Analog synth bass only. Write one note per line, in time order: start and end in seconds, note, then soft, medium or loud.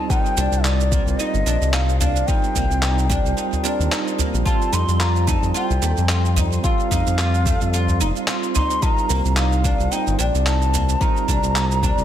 0.37 0.48 C2 loud
0.52 1.00 C2 medium
1.06 1.15 C2 medium
1.34 1.43 G1 medium
1.46 1.57 A#1 medium
1.61 2.23 C2 loud
2.56 2.66 C2 medium
2.70 3.18 C2 loud
3.25 3.34 C2 medium
3.79 3.88 D#2 loud
4.34 4.43 A#1 medium
4.73 4.84 F2 medium
4.88 5.36 F2 medium
5.43 5.52 F2 medium
5.70 5.79 C2 medium
5.82 5.93 D#2 medium
5.98 6.59 F2 medium
6.91 7.02 F2 medium
7.07 7.55 F2 loud
7.62 8.02 F2 medium
8.01 8.12 F1 loud
9.10 9.21 C2 medium
9.25 9.73 C2 medium
9.79 9.88 C2 medium
10.07 10.16 G1 medium
10.19 10.30 A#1 medium
10.34 10.96 C2 loud
11.28 11.39 C2 medium
11.43 11.91 C2 loud
11.98 12.04 C2 medium